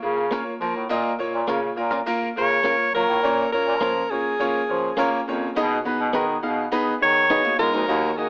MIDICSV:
0, 0, Header, 1, 6, 480
1, 0, Start_track
1, 0, Tempo, 582524
1, 742, Time_signature, 4, 2, 24, 8
1, 6833, End_track
2, 0, Start_track
2, 0, Title_t, "Alto saxophone"
2, 0, Program_c, 0, 65
2, 1962, Note_on_c, 0, 73, 108
2, 2399, Note_off_c, 0, 73, 0
2, 2430, Note_on_c, 0, 70, 113
2, 2873, Note_off_c, 0, 70, 0
2, 2903, Note_on_c, 0, 70, 105
2, 3383, Note_on_c, 0, 68, 101
2, 3395, Note_off_c, 0, 70, 0
2, 4341, Note_off_c, 0, 68, 0
2, 5791, Note_on_c, 0, 73, 127
2, 6233, Note_off_c, 0, 73, 0
2, 6257, Note_on_c, 0, 70, 115
2, 6685, Note_off_c, 0, 70, 0
2, 6685, Note_on_c, 0, 70, 72
2, 6734, Note_on_c, 0, 68, 103
2, 6746, Note_off_c, 0, 70, 0
2, 6833, Note_off_c, 0, 68, 0
2, 6833, End_track
3, 0, Start_track
3, 0, Title_t, "Grand piano"
3, 0, Program_c, 1, 0
3, 18, Note_on_c, 1, 58, 89
3, 22, Note_on_c, 1, 65, 78
3, 24, Note_on_c, 1, 68, 90
3, 188, Note_off_c, 1, 58, 0
3, 190, Note_off_c, 1, 65, 0
3, 191, Note_off_c, 1, 68, 0
3, 259, Note_on_c, 1, 58, 91
3, 263, Note_on_c, 1, 65, 80
3, 268, Note_on_c, 1, 73, 103
3, 428, Note_off_c, 1, 58, 0
3, 431, Note_off_c, 1, 65, 0
3, 433, Note_off_c, 1, 73, 0
3, 501, Note_on_c, 1, 58, 95
3, 505, Note_on_c, 1, 65, 82
3, 508, Note_on_c, 1, 70, 97
3, 669, Note_off_c, 1, 58, 0
3, 671, Note_off_c, 1, 65, 0
3, 673, Note_off_c, 1, 70, 0
3, 736, Note_on_c, 1, 58, 117
3, 741, Note_on_c, 1, 46, 77
3, 742, Note_on_c, 1, 65, 106
3, 746, Note_on_c, 1, 75, 127
3, 907, Note_off_c, 1, 58, 0
3, 910, Note_off_c, 1, 65, 0
3, 912, Note_off_c, 1, 75, 0
3, 978, Note_on_c, 1, 58, 94
3, 982, Note_on_c, 1, 65, 86
3, 986, Note_on_c, 1, 73, 105
3, 1148, Note_off_c, 1, 58, 0
3, 1150, Note_off_c, 1, 65, 0
3, 1152, Note_off_c, 1, 73, 0
3, 1216, Note_on_c, 1, 58, 83
3, 1220, Note_on_c, 1, 65, 76
3, 1227, Note_on_c, 1, 73, 98
3, 1387, Note_off_c, 1, 58, 0
3, 1389, Note_off_c, 1, 65, 0
3, 1392, Note_off_c, 1, 73, 0
3, 1428, Note_off_c, 1, 46, 0
3, 1452, Note_on_c, 1, 58, 84
3, 1458, Note_on_c, 1, 65, 83
3, 1462, Note_on_c, 1, 70, 96
3, 1625, Note_off_c, 1, 58, 0
3, 1628, Note_off_c, 1, 65, 0
3, 1630, Note_off_c, 1, 70, 0
3, 1700, Note_on_c, 1, 58, 116
3, 1703, Note_on_c, 1, 65, 108
3, 1706, Note_on_c, 1, 70, 127
3, 1869, Note_off_c, 1, 58, 0
3, 1871, Note_off_c, 1, 65, 0
3, 1872, Note_off_c, 1, 70, 0
3, 1946, Note_on_c, 1, 58, 88
3, 1952, Note_on_c, 1, 65, 76
3, 1954, Note_on_c, 1, 70, 102
3, 2112, Note_off_c, 1, 58, 0
3, 2115, Note_off_c, 1, 65, 0
3, 2116, Note_off_c, 1, 70, 0
3, 2186, Note_on_c, 1, 58, 85
3, 2190, Note_on_c, 1, 65, 80
3, 2191, Note_on_c, 1, 70, 98
3, 2352, Note_off_c, 1, 58, 0
3, 2354, Note_off_c, 1, 65, 0
3, 2354, Note_off_c, 1, 70, 0
3, 2430, Note_on_c, 1, 58, 89
3, 2435, Note_on_c, 1, 65, 81
3, 2437, Note_on_c, 1, 73, 105
3, 2594, Note_off_c, 1, 58, 0
3, 2596, Note_off_c, 1, 65, 0
3, 2597, Note_off_c, 1, 73, 0
3, 2669, Note_on_c, 1, 58, 102
3, 2670, Note_on_c, 1, 61, 92
3, 2672, Note_on_c, 1, 65, 89
3, 2673, Note_on_c, 1, 46, 71
3, 2676, Note_on_c, 1, 73, 107
3, 2833, Note_off_c, 1, 58, 0
3, 2834, Note_off_c, 1, 61, 0
3, 2835, Note_off_c, 1, 65, 0
3, 2836, Note_off_c, 1, 73, 0
3, 2908, Note_on_c, 1, 58, 82
3, 2912, Note_on_c, 1, 61, 75
3, 2914, Note_on_c, 1, 65, 71
3, 2919, Note_on_c, 1, 73, 91
3, 3072, Note_off_c, 1, 58, 0
3, 3075, Note_off_c, 1, 61, 0
3, 3075, Note_off_c, 1, 65, 0
3, 3078, Note_off_c, 1, 73, 0
3, 3152, Note_on_c, 1, 58, 72
3, 3154, Note_on_c, 1, 65, 71
3, 3156, Note_on_c, 1, 61, 70
3, 3156, Note_on_c, 1, 73, 84
3, 3314, Note_off_c, 1, 58, 0
3, 3316, Note_off_c, 1, 61, 0
3, 3316, Note_off_c, 1, 65, 0
3, 3317, Note_off_c, 1, 73, 0
3, 3354, Note_off_c, 1, 46, 0
3, 3387, Note_on_c, 1, 58, 75
3, 3391, Note_on_c, 1, 61, 71
3, 3391, Note_on_c, 1, 65, 72
3, 3394, Note_on_c, 1, 73, 86
3, 3552, Note_off_c, 1, 58, 0
3, 3554, Note_off_c, 1, 61, 0
3, 3554, Note_off_c, 1, 65, 0
3, 3555, Note_off_c, 1, 73, 0
3, 3624, Note_on_c, 1, 58, 93
3, 3624, Note_on_c, 1, 61, 98
3, 3628, Note_on_c, 1, 65, 96
3, 3630, Note_on_c, 1, 73, 115
3, 3790, Note_off_c, 1, 58, 0
3, 3790, Note_off_c, 1, 61, 0
3, 3792, Note_off_c, 1, 65, 0
3, 3793, Note_off_c, 1, 73, 0
3, 3863, Note_on_c, 1, 58, 73
3, 3870, Note_on_c, 1, 65, 64
3, 3871, Note_on_c, 1, 61, 70
3, 3876, Note_on_c, 1, 73, 78
3, 4030, Note_off_c, 1, 58, 0
3, 4033, Note_off_c, 1, 65, 0
3, 4034, Note_off_c, 1, 61, 0
3, 4036, Note_off_c, 1, 73, 0
3, 4107, Note_on_c, 1, 58, 115
3, 4112, Note_on_c, 1, 61, 110
3, 4115, Note_on_c, 1, 65, 100
3, 4117, Note_on_c, 1, 73, 127
3, 4272, Note_off_c, 1, 58, 0
3, 4274, Note_off_c, 1, 61, 0
3, 4276, Note_off_c, 1, 65, 0
3, 4276, Note_off_c, 1, 73, 0
3, 4348, Note_on_c, 1, 58, 93
3, 4350, Note_on_c, 1, 61, 85
3, 4356, Note_on_c, 1, 73, 104
3, 4357, Note_on_c, 1, 65, 87
3, 4512, Note_off_c, 1, 58, 0
3, 4513, Note_off_c, 1, 61, 0
3, 4516, Note_off_c, 1, 65, 0
3, 4516, Note_off_c, 1, 73, 0
3, 4584, Note_on_c, 1, 59, 124
3, 4586, Note_on_c, 1, 63, 115
3, 4587, Note_on_c, 1, 47, 79
3, 4590, Note_on_c, 1, 68, 112
3, 4590, Note_on_c, 1, 75, 127
3, 4750, Note_off_c, 1, 59, 0
3, 4751, Note_off_c, 1, 63, 0
3, 4753, Note_off_c, 1, 68, 0
3, 4753, Note_off_c, 1, 75, 0
3, 4823, Note_on_c, 1, 59, 102
3, 4827, Note_on_c, 1, 68, 91
3, 4828, Note_on_c, 1, 63, 92
3, 4828, Note_on_c, 1, 71, 109
3, 4989, Note_off_c, 1, 59, 0
3, 4991, Note_off_c, 1, 68, 0
3, 4992, Note_off_c, 1, 63, 0
3, 4992, Note_off_c, 1, 71, 0
3, 5060, Note_on_c, 1, 59, 90
3, 5065, Note_on_c, 1, 63, 80
3, 5065, Note_on_c, 1, 68, 78
3, 5067, Note_on_c, 1, 75, 104
3, 5228, Note_off_c, 1, 59, 0
3, 5230, Note_off_c, 1, 63, 0
3, 5231, Note_off_c, 1, 68, 0
3, 5231, Note_off_c, 1, 75, 0
3, 5270, Note_off_c, 1, 47, 0
3, 5295, Note_on_c, 1, 59, 93
3, 5297, Note_on_c, 1, 63, 87
3, 5301, Note_on_c, 1, 68, 83
3, 5301, Note_on_c, 1, 77, 98
3, 5465, Note_off_c, 1, 59, 0
3, 5467, Note_off_c, 1, 63, 0
3, 5468, Note_off_c, 1, 68, 0
3, 5468, Note_off_c, 1, 77, 0
3, 5535, Note_on_c, 1, 59, 120
3, 5537, Note_on_c, 1, 63, 115
3, 5538, Note_on_c, 1, 68, 110
3, 5542, Note_on_c, 1, 71, 127
3, 5705, Note_off_c, 1, 59, 0
3, 5706, Note_off_c, 1, 63, 0
3, 5707, Note_off_c, 1, 68, 0
3, 5709, Note_off_c, 1, 71, 0
3, 5774, Note_on_c, 1, 59, 75
3, 5778, Note_on_c, 1, 63, 70
3, 5780, Note_on_c, 1, 68, 69
3, 5782, Note_on_c, 1, 75, 80
3, 5945, Note_off_c, 1, 59, 0
3, 5947, Note_off_c, 1, 63, 0
3, 5948, Note_off_c, 1, 68, 0
3, 5949, Note_off_c, 1, 75, 0
3, 6016, Note_on_c, 1, 63, 87
3, 6017, Note_on_c, 1, 59, 97
3, 6020, Note_on_c, 1, 68, 87
3, 6020, Note_on_c, 1, 75, 113
3, 6186, Note_off_c, 1, 59, 0
3, 6186, Note_off_c, 1, 63, 0
3, 6188, Note_off_c, 1, 68, 0
3, 6188, Note_off_c, 1, 75, 0
3, 6258, Note_on_c, 1, 59, 81
3, 6260, Note_on_c, 1, 63, 71
3, 6261, Note_on_c, 1, 68, 70
3, 6266, Note_on_c, 1, 75, 91
3, 6427, Note_off_c, 1, 59, 0
3, 6428, Note_off_c, 1, 63, 0
3, 6428, Note_off_c, 1, 68, 0
3, 6431, Note_off_c, 1, 75, 0
3, 6496, Note_on_c, 1, 63, 89
3, 6497, Note_on_c, 1, 58, 104
3, 6499, Note_on_c, 1, 66, 91
3, 6501, Note_on_c, 1, 51, 71
3, 6504, Note_on_c, 1, 75, 117
3, 6666, Note_off_c, 1, 58, 0
3, 6666, Note_off_c, 1, 63, 0
3, 6667, Note_off_c, 1, 66, 0
3, 6670, Note_off_c, 1, 75, 0
3, 6737, Note_on_c, 1, 58, 83
3, 6740, Note_on_c, 1, 63, 78
3, 6745, Note_on_c, 1, 66, 77
3, 6747, Note_on_c, 1, 75, 90
3, 6833, Note_off_c, 1, 51, 0
3, 6833, Note_off_c, 1, 58, 0
3, 6833, Note_off_c, 1, 63, 0
3, 6833, Note_off_c, 1, 66, 0
3, 6833, Note_off_c, 1, 75, 0
3, 6833, End_track
4, 0, Start_track
4, 0, Title_t, "Clean electric guitar"
4, 0, Program_c, 2, 27
4, 256, Note_on_c, 2, 58, 89
4, 264, Note_on_c, 2, 61, 99
4, 267, Note_on_c, 2, 65, 93
4, 272, Note_on_c, 2, 70, 95
4, 348, Note_off_c, 2, 58, 0
4, 352, Note_off_c, 2, 61, 0
4, 353, Note_off_c, 2, 65, 0
4, 356, Note_off_c, 2, 70, 0
4, 1216, Note_on_c, 2, 58, 82
4, 1222, Note_on_c, 2, 61, 82
4, 1227, Note_on_c, 2, 65, 96
4, 1233, Note_on_c, 2, 70, 93
4, 1308, Note_off_c, 2, 58, 0
4, 1311, Note_off_c, 2, 61, 0
4, 1313, Note_off_c, 2, 65, 0
4, 1316, Note_off_c, 2, 70, 0
4, 1573, Note_on_c, 2, 70, 68
4, 1581, Note_on_c, 2, 65, 75
4, 1585, Note_on_c, 2, 61, 63
4, 1589, Note_on_c, 2, 58, 60
4, 1647, Note_off_c, 2, 70, 0
4, 1651, Note_off_c, 2, 65, 0
4, 1653, Note_off_c, 2, 61, 0
4, 1655, Note_off_c, 2, 58, 0
4, 2174, Note_on_c, 2, 58, 85
4, 2181, Note_on_c, 2, 61, 101
4, 2186, Note_on_c, 2, 65, 99
4, 2189, Note_on_c, 2, 70, 99
4, 2266, Note_off_c, 2, 58, 0
4, 2270, Note_off_c, 2, 61, 0
4, 2273, Note_off_c, 2, 65, 0
4, 2274, Note_off_c, 2, 70, 0
4, 3137, Note_on_c, 2, 58, 94
4, 3143, Note_on_c, 2, 61, 95
4, 3149, Note_on_c, 2, 65, 99
4, 3152, Note_on_c, 2, 70, 100
4, 3228, Note_off_c, 2, 58, 0
4, 3231, Note_off_c, 2, 61, 0
4, 3234, Note_off_c, 2, 65, 0
4, 3235, Note_off_c, 2, 70, 0
4, 4094, Note_on_c, 2, 58, 91
4, 4101, Note_on_c, 2, 61, 93
4, 4107, Note_on_c, 2, 65, 96
4, 4111, Note_on_c, 2, 70, 111
4, 4186, Note_off_c, 2, 58, 0
4, 4189, Note_off_c, 2, 61, 0
4, 4193, Note_off_c, 2, 65, 0
4, 4195, Note_off_c, 2, 70, 0
4, 5054, Note_on_c, 2, 59, 90
4, 5059, Note_on_c, 2, 63, 93
4, 5064, Note_on_c, 2, 68, 94
4, 5067, Note_on_c, 2, 71, 105
4, 5146, Note_off_c, 2, 59, 0
4, 5148, Note_off_c, 2, 63, 0
4, 5151, Note_off_c, 2, 68, 0
4, 5152, Note_off_c, 2, 71, 0
4, 6015, Note_on_c, 2, 59, 91
4, 6022, Note_on_c, 2, 63, 96
4, 6025, Note_on_c, 2, 68, 98
4, 6030, Note_on_c, 2, 71, 96
4, 6106, Note_off_c, 2, 59, 0
4, 6110, Note_off_c, 2, 63, 0
4, 6111, Note_off_c, 2, 68, 0
4, 6114, Note_off_c, 2, 71, 0
4, 6833, End_track
5, 0, Start_track
5, 0, Title_t, "Hollow-body jazz guitar"
5, 0, Program_c, 3, 26
5, 6016, Note_on_c, 3, 63, 86
5, 6023, Note_on_c, 3, 54, 66
5, 6132, Note_off_c, 3, 63, 0
5, 6135, Note_off_c, 3, 54, 0
5, 6136, Note_on_c, 3, 58, 79
5, 6139, Note_on_c, 3, 66, 71
5, 6249, Note_off_c, 3, 66, 0
5, 6252, Note_on_c, 3, 65, 84
5, 6253, Note_off_c, 3, 58, 0
5, 6259, Note_on_c, 3, 56, 66
5, 6370, Note_off_c, 3, 65, 0
5, 6373, Note_off_c, 3, 56, 0
5, 6374, Note_on_c, 3, 63, 77
5, 6381, Note_on_c, 3, 54, 68
5, 6605, Note_off_c, 3, 63, 0
5, 6608, Note_off_c, 3, 54, 0
5, 6833, End_track
6, 0, Start_track
6, 0, Title_t, "Bass clarinet"
6, 0, Program_c, 4, 71
6, 23, Note_on_c, 4, 49, 97
6, 310, Note_off_c, 4, 49, 0
6, 500, Note_on_c, 4, 53, 88
6, 597, Note_off_c, 4, 53, 0
6, 624, Note_on_c, 4, 45, 83
6, 719, Note_off_c, 4, 45, 0
6, 744, Note_on_c, 4, 46, 95
6, 934, Note_off_c, 4, 46, 0
6, 1105, Note_on_c, 4, 46, 93
6, 1200, Note_off_c, 4, 46, 0
6, 1221, Note_on_c, 4, 49, 96
6, 1413, Note_off_c, 4, 49, 0
6, 1460, Note_on_c, 4, 46, 89
6, 1652, Note_off_c, 4, 46, 0
6, 1822, Note_on_c, 4, 49, 45
6, 1870, Note_off_c, 4, 49, 0
6, 1945, Note_on_c, 4, 49, 97
6, 2230, Note_off_c, 4, 49, 0
6, 2421, Note_on_c, 4, 54, 86
6, 2517, Note_off_c, 4, 54, 0
6, 2542, Note_on_c, 4, 45, 87
6, 2638, Note_off_c, 4, 45, 0
6, 2656, Note_on_c, 4, 46, 97
6, 2850, Note_off_c, 4, 46, 0
6, 3020, Note_on_c, 4, 46, 99
6, 3137, Note_on_c, 4, 53, 90
6, 3149, Note_off_c, 4, 46, 0
6, 3330, Note_off_c, 4, 53, 0
6, 3742, Note_on_c, 4, 53, 45
6, 3789, Note_off_c, 4, 53, 0
6, 3862, Note_on_c, 4, 53, 91
6, 4053, Note_off_c, 4, 53, 0
6, 4102, Note_on_c, 4, 58, 99
6, 4293, Note_off_c, 4, 58, 0
6, 4337, Note_on_c, 4, 41, 86
6, 4530, Note_off_c, 4, 41, 0
6, 4582, Note_on_c, 4, 47, 108
6, 4773, Note_off_c, 4, 47, 0
6, 4943, Note_on_c, 4, 47, 92
6, 5037, Note_off_c, 4, 47, 0
6, 5063, Note_on_c, 4, 51, 93
6, 5253, Note_off_c, 4, 51, 0
6, 5303, Note_on_c, 4, 47, 85
6, 5493, Note_off_c, 4, 47, 0
6, 5662, Note_on_c, 4, 51, 46
6, 5709, Note_off_c, 4, 51, 0
6, 5779, Note_on_c, 4, 51, 82
6, 6066, Note_off_c, 4, 51, 0
6, 6258, Note_on_c, 4, 56, 90
6, 6354, Note_off_c, 4, 56, 0
6, 6382, Note_on_c, 4, 38, 92
6, 6477, Note_off_c, 4, 38, 0
6, 6495, Note_on_c, 4, 39, 112
6, 6688, Note_off_c, 4, 39, 0
6, 6833, End_track
0, 0, End_of_file